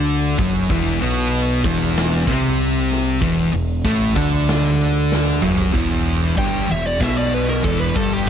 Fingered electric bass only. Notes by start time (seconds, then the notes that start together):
Already playing: D2
0.39 F#1
0.70 E1
1.01 B1
1.64 E1
2.27 C2
3.22 E1
3.53 E1
3.84 A1
4.16 D2
5.42 F#1
5.74 E1
6.37 G1
6.70 E1
7.01 B1
7.64 E1
7.96 G1